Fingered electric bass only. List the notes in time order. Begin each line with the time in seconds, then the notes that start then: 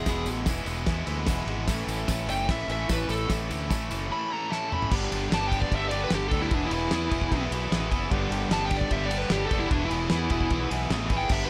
0.06 E1
0.26 A1
0.46 E1
0.66 E1
0.87 E2
1.07 D2
1.28 E1
1.46 G#1
1.68 A1
1.87 A1
2.08 A1
2.27 F#1
2.49 A1
2.68 A1
2.89 A1
3.09 A1
3.30 A1
3.50 D2
3.70 A1
3.91 F#1
4.91 G1
5.12 G1
5.31 G1
5.71 G1
6.11 G1
6.31 D2
6.51 E1
6.71 E1
6.91 E2
7.11 E1
7.32 B1
7.51 B1
7.71 A1
7.91 F#1
8.11 G1
8.31 G1
8.49 G1
8.91 G1
9.30 G1
9.51 F#1
9.71 E1
9.90 E1
10.11 E2
10.31 E1
10.50 B1
10.71 B1
10.90 A1
11.10 G#1
11.30 G1